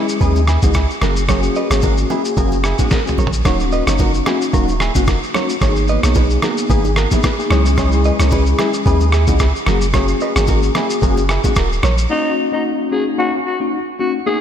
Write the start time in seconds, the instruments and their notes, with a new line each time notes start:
Already playing: tine electric piano G#3 C#4 E4 G#4
0.09 shaker
0.20 sub bass D#2, tine electric piano G#3 C#4 E4 G#4, clean electric guitar G#4 B4, kick, low conga, shaker
0.36 high bongo, shaker
0.47 clean electric guitar E4 G#4, cross-stick, shaker
0.62 sub bass C#2, tine electric piano G#3 C#4 E4 G#4, clean electric guitar D#4 F#4, kick, low bongo, shaker
0.74 clean electric guitar E4 G#4, kick, cross-stick, high bongo, shaker
0.91 shaker
1.02 sub bass F#1, tine electric piano A#3 C#4 F#4 G#4, clean electric guitar F#4 A#4, cross-stick, high bongo, low conga, shaker
1.16 shaker
1.29 tine electric piano A#3 C#4 F#4 G#4, clean electric guitar A#4 C#5, kick, cross-stick, low conga, shaker
1.43 shaker
1.55 clean electric guitar B4 D#5, shaker
1.70 sub bass G#1, tine electric piano A#3 C#4 F#4 G#4, clean electric guitar A#4 C#5, cross-stick, low bongo, shaker
1.82 clean electric guitar F#4 A#4, kick, high bongo, shaker
1.97 shaker
2.10 tine electric piano A#3 C#4 F#4 G#4, clean electric guitar E4 G#4, low bongo, shaker
2.25 shaker
2.37 sub bass F#1, tine electric piano A#3 C#4 F#4 G#4, clean electric guitar F#4 A#4, kick, low conga, shaker
2.52 high bongo, shaker
2.64 clean electric guitar E4 G#4, cross-stick, shaker
2.78 tine electric piano A#3 C#4 F#4 G#4, clean electric guitar D#4 F#4, kick, low bongo, shaker
2.90 clean electric guitar F#4 A#4, kick, snare, high bongo, shaker
3.05 tine electric piano A#3 C#4 F#4 G#4, mid tom, shaker
3.18 sub bass A#1, clean electric guitar A#4 C#5, high bongo, low conga, shaker
3.27 floor tom
3.33 shaker
3.45 sub bass D#1, tine electric piano A#3 C#4 D#4 F#4, clean electric guitar A#4 C#5, kick, cross-stick, low conga, shaker
3.60 shaker
3.72 clean electric guitar B4 D#5, shaker
3.87 sub bass F#1, tine electric piano A#3 C#4 D#4 F#4, clean electric guitar A#4 C#5, cross-stick, low bongo, shaker
3.98 clean electric guitar F#4 A#4, kick, high bongo, shaker
4.14 shaker
4.26 tine electric piano A#3 C#4 D#4 F#4, clean electric guitar E4 G#4, cross-stick, low bongo, shaker
4.41 shaker
4.53 sub bass D#1, tine electric piano A#3 C#4 D#4 F#4, clean electric guitar F#4 A#4, kick, low conga, shaker
4.68 high bongo, shaker
4.80 clean electric guitar E4 G#4, cross-stick, shaker
4.95 sub bass F#1, tine electric piano A#3 C#4 D#4 F#4, clean electric guitar D#4 F#4, kick, low bongo, shaker
5.07 clean electric guitar F#4 A#4, kick, cross-stick, high bongo, shaker
5.23 shaker
5.34 tine electric piano A#3 C#4 D#4 F#4, clean electric guitar A#4 C#5, cross-stick, high bongo, low conga, shaker
5.49 shaker
5.61 sub bass G#1, tine electric piano A#3 B3 D#4 G#4, clean electric guitar A#4 C#5, kick, cross-stick, low conga, shaker
5.76 shaker
5.88 clean electric guitar B4 D#5, shaker
6.03 sub bass B1, tine electric piano A#3 B3 D#4 G#4, clean electric guitar A#4 C#5, cross-stick, low bongo, shaker
6.14 clean electric guitar G#4 B4, kick, high bongo, shaker
6.30 shaker
6.42 tine electric piano A#3 B3 D#4 G#4, clean electric guitar F#4 A#4, cross-stick, low bongo, shaker
6.57 shaker
6.69 sub bass G#1, tine electric piano A#3 B3 D#4 G#4, clean electric guitar G#4 B4, kick, low conga, shaker
6.85 high bongo, shaker
6.96 clean electric guitar F#4 A#4, cross-stick, shaker
7.11 tine electric piano A#3 B3 D#4 G#4, clean electric guitar E4 G#4, kick, low bongo, shaker
7.23 clean electric guitar G#4 B4, kick, cross-stick, high bongo, shaker
7.38 tine electric piano A#3 B3 D#4 G#4, shaker
7.50 sub bass C#2, tine electric piano G#3 C#4 E4 G#4, clean electric guitar G#4 C#5, cross-stick, high bongo, low conga, shaker
7.65 shaker
7.77 tine electric piano G#3 C#4 E4 G#4, clean electric guitar G#4 C#5, kick, cross-stick, low conga, shaker
7.92 shaker
8.04 clean electric guitar B4 D#5, shaker
8.19 sub bass C#2, tine electric piano G#3 C#4 E4 G#4, clean electric guitar A#4 C#5, cross-stick, low bongo, shaker
8.31 clean electric guitar G#4 B4, kick, high bongo, shaker
8.46 shaker
8.58 tine electric piano G#3 C#4 E4 G#4, clean electric guitar E4 G#4, cross-stick, low bongo, shaker
8.74 shaker
8.85 sub bass D#2, tine electric piano G#3 C#4 E4 G#4, clean electric guitar G#4 B4, kick, low conga, shaker
9.01 high bongo, shaker
9.12 clean electric guitar E4 G#4, cross-stick, shaker
9.27 sub bass C#2, tine electric piano G#3 C#4 E4 G#4, clean electric guitar D#4 F#4, kick, low bongo, shaker
9.39 clean electric guitar E4 G#4, kick, cross-stick, high bongo, shaker
9.56 shaker
9.66 sub bass F#1, tine electric piano A#3 C#4 F#4 G#4, clean electric guitar F#4 A#4, cross-stick, high bongo, low conga, shaker
9.81 shaker
9.93 tine electric piano A#3 C#4 F#4 G#4, clean electric guitar A#4 C#5, kick, cross-stick, low conga, shaker
10.08 shaker
10.20 clean electric guitar B4 D#5, shaker
10.35 sub bass G#1, tine electric piano A#3 C#4 F#4 G#4, clean electric guitar A#4 C#5, cross-stick, low bongo, shaker
10.47 clean electric guitar F#4 A#4, kick, high bongo, shaker
10.62 shaker
10.75 tine electric piano A#3 C#4 F#4 G#4, clean electric guitar E4 G#4, cross-stick, low bongo, shaker
10.90 shaker
11.02 sub bass F#1, tine electric piano A#3 C#4 F#4 G#4, clean electric guitar F#4 A#4, kick, low conga, shaker
11.17 high bongo, shaker
11.29 clean electric guitar E4 G#4, cross-stick, shaker
11.43 tine electric piano A#3 C#4 F#4 G#4, clean electric guitar D#4 F#4, kick, low bongo, shaker
11.56 sub bass D#1, clean electric guitar F#4 A#4, kick, cross-stick, high bongo, shaker
11.72 shaker
11.83 sub bass A#1, clean electric guitar A#4 C#5, cross-stick, high bongo, low conga, shaker
11.98 shaker
12.10 tine electric piano A#3 C#4 D#4 F#4, alto saxophone D#4
12.52 tine electric piano A#3 C#4 D#4 F#4, alto saxophone D#4
12.91 tine electric piano A#3 C#4 D#4 F#4, alto saxophone G#4
13.18 tine electric piano A#3 C#4 D#4 F#4, alto saxophone F#4
13.46 alto saxophone F#4
13.60 tine electric piano A#3 C#4 D#4 F#4
13.99 tine electric piano A#3 C#4 D#4 F#4, alto saxophone F#4
14.26 tine electric piano A#3 B3 D#4 G#4, alto saxophone G#4